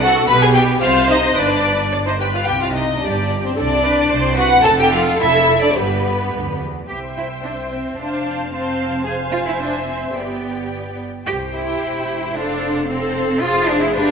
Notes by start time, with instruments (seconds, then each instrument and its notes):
Already playing: double bass section C2, cello section C3
0.00 violin section F#4 F#5, viola section A4
0.27 double bass section B1, cello section B2, viola section G4, violin section B4 B5
0.40 violin section G#4 G#5
0.54 violin section G4 G5
0.81 double bass section C2, cello section C3, violin section F4 F5, viola section C5
1.09 violin section D#4 D#5
1.36 double bass section G1, cello section G2, violin section D4 D5, viola section B4
1.91 viola section D5
2.05 violin section D#4 D#5, viola section C5
2.19 violin section G4 G5, viola section B4
2.34 violin section F4 F5
2.46 double bass section C2, cello section C3, violin section G4 G5
2.61 violin section F4 F5
2.75 violin section D#4 D#5
3.02 double bass section G1, cello section G2, violin section D4 D5, viola section G4
3.45 violin section C4 C5
3.57 double bass section C2, cello section C3, violin section D4 D5, viola section A4
3.83 viola section B4
4.10 double bass section C2, cello section C3, viola section C5
4.35 violin section F#4 F#5, viola section B4
4.63 double bass section F1, cello section F2, viola section A4, violin section A4 A5
4.79 violin section G4 G5
4.92 violin section F4 F5
5.20 double bass section F1, cello section F2, violin section E4 E5
5.62 violin section D4 D5
5.75 double bass section G1, cello section G2, violin section B3 B4, viola section G4
6.32 double bass section D2, cello section G2
6.47 cello section F2
6.61 cello section E2
6.88 double bass section C2, cello section G4, viola section C5, violin section E5 G5
7.17 cello section E4
7.44 cello section D4
7.71 cello section C4
7.97 double bass section F1, cello section D4, viola section C5, violin section F5 A5
8.51 cello section C4, viola section C5, violin section F5 A5
9.04 cello section G#4, viola section C5, violin section F5 G#5
9.33 cello section F4
9.47 cello section E4
9.60 cello section D4, violin section E5
9.87 cello section C4
10.14 double bass section G1, cello section B3, viola section G4, violin section D5 G5
11.25 double bass section C2, cello section G4, viola section G4, violin section C5 G5
11.54 cello section E4
11.82 double bass section E1
12.35 double bass section F1, cello section D4, viola section A4, violin section C5 F5
12.89 cello section C4, viola section A4, violin section C5 F5
13.43 double bass section F1, cello section F4, viola section G#4, violin section C5 F5
13.68 cello section D4
13.83 cello section E4
13.96 double bass section G1, cello section D4, viola section G4, violin section B4 F5